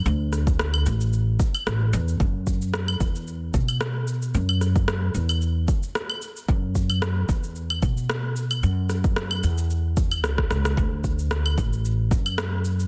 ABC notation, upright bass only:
X:1
M:4/4
L:1/8
Q:"Swing 16ths" 1/4=112
K:F#m
V:1 name="Upright bass" clef=bass
D,,3 A,,,2 z A,,, E,, | F,,3 E,,2 B,,3 | F,,3 E,,2 z3 | F,,3 E,,2 B,,3 |
F,,3 E,,3 C,, C,, | D,,3 A,,,2 F,,3 |]